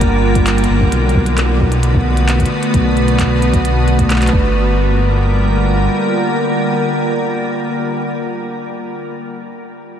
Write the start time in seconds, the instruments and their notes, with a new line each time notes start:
Already playing: detuned saw bass G1, ambient pad D3 G3 A#3 F4 A#4
0.01 kick, closed hi-hat
0.35 kick, closed hi-hat
0.47 clap, closed hi-hat
0.58 closed hi-hat
0.64 closed hi-hat
0.69 detuned saw bass G1
0.81 kick
0.92 detuned saw bass B1, ambient pad D3 A3 B3 F#4 B4, closed hi-hat
1.09 closed hi-hat
1.15 kick
1.26 closed hi-hat
1.38 clap, closed hi-hat
1.60 kick
1.72 closed hi-hat
1.83 closed hi-hat
1.94 kick
2.17 closed hi-hat
2.29 clap, closed hi-hat
2.40 kick, closed hi-hat
2.46 closed hi-hat
2.63 closed hi-hat
2.74 detuned saw bass B1, kick, closed hi-hat
2.97 closed hi-hat
3.08 closed hi-hat
3.19 kick, clap, closed hi-hat
3.42 closed hi-hat
3.54 kick, closed hi-hat
3.65 closed hi-hat
3.88 closed hi-hat
3.99 kick, closed hi-hat
4.10 clap, closed hi-hat
4.16 clap
4.22 clap, closed hi-hat
4.27 clap, closed hi-hat
4.33 detuned saw bass G1, ambient pad D3 G3 A#3 F4 A#4, kick